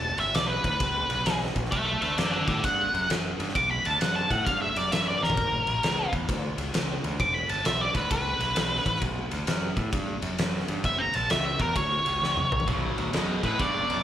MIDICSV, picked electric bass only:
0, 0, Header, 1, 2, 480
1, 0, Start_track
1, 0, Key_signature, 2, "minor"
1, 0, Tempo, 457317
1, 1806, Time_signature, 4, 2, 24, 8
1, 14727, End_track
2, 0, Start_track
2, 0, Title_t, "Picked electric bass"
2, 0, Program_c, 0, 34
2, 0, Note_on_c, 0, 28, 92
2, 120, Note_off_c, 0, 28, 0
2, 187, Note_on_c, 0, 31, 93
2, 319, Note_off_c, 0, 31, 0
2, 355, Note_on_c, 0, 35, 87
2, 599, Note_off_c, 0, 35, 0
2, 672, Note_on_c, 0, 38, 91
2, 803, Note_off_c, 0, 38, 0
2, 843, Note_on_c, 0, 37, 92
2, 1085, Note_off_c, 0, 37, 0
2, 1151, Note_on_c, 0, 35, 85
2, 1283, Note_off_c, 0, 35, 0
2, 1322, Note_on_c, 0, 35, 83
2, 1565, Note_off_c, 0, 35, 0
2, 1635, Note_on_c, 0, 34, 85
2, 1767, Note_off_c, 0, 34, 0
2, 1811, Note_on_c, 0, 35, 93
2, 2051, Note_off_c, 0, 35, 0
2, 2121, Note_on_c, 0, 38, 85
2, 2251, Note_off_c, 0, 38, 0
2, 2293, Note_on_c, 0, 42, 83
2, 2532, Note_off_c, 0, 42, 0
2, 2601, Note_on_c, 0, 45, 92
2, 2731, Note_off_c, 0, 45, 0
2, 2766, Note_on_c, 0, 43, 98
2, 3008, Note_off_c, 0, 43, 0
2, 3084, Note_on_c, 0, 42, 90
2, 3213, Note_off_c, 0, 42, 0
2, 3253, Note_on_c, 0, 42, 81
2, 3492, Note_off_c, 0, 42, 0
2, 3565, Note_on_c, 0, 43, 83
2, 3693, Note_off_c, 0, 43, 0
2, 3732, Note_on_c, 0, 35, 95
2, 3972, Note_off_c, 0, 35, 0
2, 4050, Note_on_c, 0, 38, 84
2, 4176, Note_off_c, 0, 38, 0
2, 4219, Note_on_c, 0, 42, 87
2, 4456, Note_off_c, 0, 42, 0
2, 4517, Note_on_c, 0, 45, 86
2, 4648, Note_off_c, 0, 45, 0
2, 4687, Note_on_c, 0, 43, 91
2, 4928, Note_off_c, 0, 43, 0
2, 4996, Note_on_c, 0, 42, 86
2, 5127, Note_off_c, 0, 42, 0
2, 5166, Note_on_c, 0, 42, 79
2, 5406, Note_off_c, 0, 42, 0
2, 5474, Note_on_c, 0, 31, 81
2, 5605, Note_off_c, 0, 31, 0
2, 5640, Note_on_c, 0, 30, 91
2, 5882, Note_off_c, 0, 30, 0
2, 5950, Note_on_c, 0, 34, 82
2, 6082, Note_off_c, 0, 34, 0
2, 6121, Note_on_c, 0, 37, 86
2, 6362, Note_off_c, 0, 37, 0
2, 6429, Note_on_c, 0, 40, 86
2, 6560, Note_off_c, 0, 40, 0
2, 6600, Note_on_c, 0, 38, 94
2, 6841, Note_off_c, 0, 38, 0
2, 6898, Note_on_c, 0, 37, 87
2, 7033, Note_off_c, 0, 37, 0
2, 7071, Note_on_c, 0, 37, 84
2, 7314, Note_off_c, 0, 37, 0
2, 7385, Note_on_c, 0, 38, 89
2, 7517, Note_off_c, 0, 38, 0
2, 7553, Note_on_c, 0, 28, 96
2, 7795, Note_off_c, 0, 28, 0
2, 7858, Note_on_c, 0, 31, 95
2, 7991, Note_off_c, 0, 31, 0
2, 8022, Note_on_c, 0, 35, 90
2, 8267, Note_off_c, 0, 35, 0
2, 8342, Note_on_c, 0, 38, 94
2, 8473, Note_off_c, 0, 38, 0
2, 8510, Note_on_c, 0, 37, 100
2, 8752, Note_off_c, 0, 37, 0
2, 8809, Note_on_c, 0, 35, 89
2, 8944, Note_off_c, 0, 35, 0
2, 8978, Note_on_c, 0, 35, 91
2, 9223, Note_off_c, 0, 35, 0
2, 9298, Note_on_c, 0, 33, 94
2, 9429, Note_off_c, 0, 33, 0
2, 9464, Note_on_c, 0, 35, 94
2, 9707, Note_off_c, 0, 35, 0
2, 9771, Note_on_c, 0, 38, 90
2, 9904, Note_off_c, 0, 38, 0
2, 9944, Note_on_c, 0, 42, 89
2, 10186, Note_off_c, 0, 42, 0
2, 10251, Note_on_c, 0, 45, 96
2, 10384, Note_off_c, 0, 45, 0
2, 10422, Note_on_c, 0, 43, 94
2, 10665, Note_off_c, 0, 43, 0
2, 10733, Note_on_c, 0, 42, 85
2, 10865, Note_off_c, 0, 42, 0
2, 10906, Note_on_c, 0, 42, 89
2, 11147, Note_off_c, 0, 42, 0
2, 11221, Note_on_c, 0, 43, 84
2, 11350, Note_off_c, 0, 43, 0
2, 11379, Note_on_c, 0, 30, 98
2, 11622, Note_off_c, 0, 30, 0
2, 11704, Note_on_c, 0, 34, 97
2, 11831, Note_off_c, 0, 34, 0
2, 11871, Note_on_c, 0, 37, 89
2, 12110, Note_off_c, 0, 37, 0
2, 12171, Note_on_c, 0, 40, 90
2, 12304, Note_off_c, 0, 40, 0
2, 12344, Note_on_c, 0, 38, 93
2, 12586, Note_off_c, 0, 38, 0
2, 12665, Note_on_c, 0, 37, 86
2, 12793, Note_off_c, 0, 37, 0
2, 12825, Note_on_c, 0, 37, 93
2, 13067, Note_off_c, 0, 37, 0
2, 13137, Note_on_c, 0, 34, 91
2, 13268, Note_off_c, 0, 34, 0
2, 13305, Note_on_c, 0, 35, 88
2, 13548, Note_off_c, 0, 35, 0
2, 13619, Note_on_c, 0, 38, 82
2, 13750, Note_off_c, 0, 38, 0
2, 13793, Note_on_c, 0, 42, 82
2, 14034, Note_off_c, 0, 42, 0
2, 14099, Note_on_c, 0, 45, 85
2, 14231, Note_off_c, 0, 45, 0
2, 14270, Note_on_c, 0, 43, 88
2, 14513, Note_off_c, 0, 43, 0
2, 14587, Note_on_c, 0, 42, 81
2, 14717, Note_off_c, 0, 42, 0
2, 14727, End_track
0, 0, End_of_file